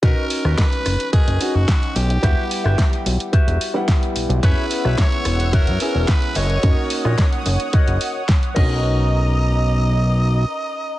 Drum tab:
CC |----------------|----------------|----------------|--------------x-|
HH |x-o-xxoxxxo-xxox|x-o-xxoxxxo-xxox|x-o-xxoxxxo-xxox|x-o-xxoxxxo-xx--|
SD |---ro-r-----o---|---ro-------o---|---ro-r-----o---|---ro-------o---|
BD |o---o---o---o---|o---o---o---o---|o---o---o---o---|o---o---o---o-o-|

CC |----------------|
HH |----------------|
SD |----------------|
BD |----------------|